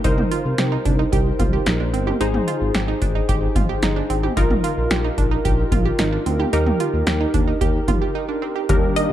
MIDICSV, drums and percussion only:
0, 0, Header, 1, 2, 480
1, 0, Start_track
1, 0, Key_signature, -3, "major"
1, 0, Tempo, 540541
1, 39, Time_signature, 4, 2, 24, 8
1, 8104, End_track
2, 0, Start_track
2, 0, Title_t, "Drums"
2, 39, Note_on_c, 9, 36, 109
2, 39, Note_on_c, 9, 42, 85
2, 128, Note_off_c, 9, 36, 0
2, 128, Note_off_c, 9, 42, 0
2, 159, Note_on_c, 9, 45, 98
2, 248, Note_off_c, 9, 45, 0
2, 280, Note_on_c, 9, 42, 83
2, 369, Note_off_c, 9, 42, 0
2, 517, Note_on_c, 9, 42, 80
2, 518, Note_on_c, 9, 38, 107
2, 605, Note_off_c, 9, 42, 0
2, 607, Note_off_c, 9, 38, 0
2, 759, Note_on_c, 9, 42, 69
2, 760, Note_on_c, 9, 36, 88
2, 848, Note_off_c, 9, 36, 0
2, 848, Note_off_c, 9, 42, 0
2, 999, Note_on_c, 9, 36, 90
2, 1001, Note_on_c, 9, 42, 72
2, 1088, Note_off_c, 9, 36, 0
2, 1090, Note_off_c, 9, 42, 0
2, 1237, Note_on_c, 9, 36, 96
2, 1239, Note_on_c, 9, 42, 60
2, 1239, Note_on_c, 9, 45, 90
2, 1325, Note_off_c, 9, 36, 0
2, 1328, Note_off_c, 9, 42, 0
2, 1328, Note_off_c, 9, 45, 0
2, 1477, Note_on_c, 9, 42, 81
2, 1479, Note_on_c, 9, 38, 106
2, 1565, Note_off_c, 9, 42, 0
2, 1567, Note_off_c, 9, 38, 0
2, 1722, Note_on_c, 9, 42, 64
2, 1811, Note_off_c, 9, 42, 0
2, 1839, Note_on_c, 9, 47, 82
2, 1927, Note_off_c, 9, 47, 0
2, 1960, Note_on_c, 9, 42, 82
2, 2049, Note_off_c, 9, 42, 0
2, 2079, Note_on_c, 9, 45, 97
2, 2168, Note_off_c, 9, 45, 0
2, 2200, Note_on_c, 9, 42, 85
2, 2289, Note_off_c, 9, 42, 0
2, 2437, Note_on_c, 9, 42, 76
2, 2439, Note_on_c, 9, 38, 110
2, 2526, Note_off_c, 9, 42, 0
2, 2527, Note_off_c, 9, 38, 0
2, 2679, Note_on_c, 9, 36, 90
2, 2679, Note_on_c, 9, 42, 73
2, 2768, Note_off_c, 9, 36, 0
2, 2768, Note_off_c, 9, 42, 0
2, 2919, Note_on_c, 9, 36, 91
2, 2921, Note_on_c, 9, 42, 71
2, 3008, Note_off_c, 9, 36, 0
2, 3010, Note_off_c, 9, 42, 0
2, 3156, Note_on_c, 9, 36, 91
2, 3159, Note_on_c, 9, 42, 62
2, 3159, Note_on_c, 9, 45, 91
2, 3245, Note_off_c, 9, 36, 0
2, 3248, Note_off_c, 9, 42, 0
2, 3248, Note_off_c, 9, 45, 0
2, 3397, Note_on_c, 9, 42, 80
2, 3399, Note_on_c, 9, 38, 105
2, 3485, Note_off_c, 9, 42, 0
2, 3488, Note_off_c, 9, 38, 0
2, 3641, Note_on_c, 9, 42, 64
2, 3730, Note_off_c, 9, 42, 0
2, 3759, Note_on_c, 9, 47, 80
2, 3848, Note_off_c, 9, 47, 0
2, 3879, Note_on_c, 9, 36, 106
2, 3880, Note_on_c, 9, 42, 82
2, 3968, Note_off_c, 9, 36, 0
2, 3969, Note_off_c, 9, 42, 0
2, 4000, Note_on_c, 9, 45, 100
2, 4089, Note_off_c, 9, 45, 0
2, 4121, Note_on_c, 9, 42, 83
2, 4209, Note_off_c, 9, 42, 0
2, 4357, Note_on_c, 9, 42, 76
2, 4359, Note_on_c, 9, 38, 111
2, 4446, Note_off_c, 9, 42, 0
2, 4448, Note_off_c, 9, 38, 0
2, 4599, Note_on_c, 9, 36, 90
2, 4599, Note_on_c, 9, 42, 69
2, 4688, Note_off_c, 9, 36, 0
2, 4688, Note_off_c, 9, 42, 0
2, 4839, Note_on_c, 9, 36, 92
2, 4841, Note_on_c, 9, 42, 71
2, 4928, Note_off_c, 9, 36, 0
2, 4930, Note_off_c, 9, 42, 0
2, 5077, Note_on_c, 9, 36, 90
2, 5079, Note_on_c, 9, 42, 63
2, 5079, Note_on_c, 9, 45, 89
2, 5165, Note_off_c, 9, 36, 0
2, 5168, Note_off_c, 9, 42, 0
2, 5168, Note_off_c, 9, 45, 0
2, 5316, Note_on_c, 9, 42, 80
2, 5319, Note_on_c, 9, 38, 107
2, 5405, Note_off_c, 9, 42, 0
2, 5407, Note_off_c, 9, 38, 0
2, 5561, Note_on_c, 9, 42, 63
2, 5650, Note_off_c, 9, 42, 0
2, 5677, Note_on_c, 9, 47, 84
2, 5766, Note_off_c, 9, 47, 0
2, 5799, Note_on_c, 9, 42, 84
2, 5888, Note_off_c, 9, 42, 0
2, 5919, Note_on_c, 9, 45, 98
2, 6007, Note_off_c, 9, 45, 0
2, 6039, Note_on_c, 9, 42, 84
2, 6128, Note_off_c, 9, 42, 0
2, 6276, Note_on_c, 9, 42, 76
2, 6277, Note_on_c, 9, 38, 110
2, 6364, Note_off_c, 9, 42, 0
2, 6366, Note_off_c, 9, 38, 0
2, 6518, Note_on_c, 9, 42, 71
2, 6519, Note_on_c, 9, 36, 90
2, 6607, Note_off_c, 9, 42, 0
2, 6608, Note_off_c, 9, 36, 0
2, 6759, Note_on_c, 9, 36, 92
2, 6761, Note_on_c, 9, 42, 75
2, 6847, Note_off_c, 9, 36, 0
2, 6849, Note_off_c, 9, 42, 0
2, 6996, Note_on_c, 9, 36, 91
2, 6998, Note_on_c, 9, 42, 63
2, 6998, Note_on_c, 9, 45, 93
2, 7085, Note_off_c, 9, 36, 0
2, 7087, Note_off_c, 9, 42, 0
2, 7087, Note_off_c, 9, 45, 0
2, 7719, Note_on_c, 9, 36, 116
2, 7719, Note_on_c, 9, 42, 90
2, 7807, Note_off_c, 9, 42, 0
2, 7808, Note_off_c, 9, 36, 0
2, 7960, Note_on_c, 9, 42, 88
2, 8049, Note_off_c, 9, 42, 0
2, 8104, End_track
0, 0, End_of_file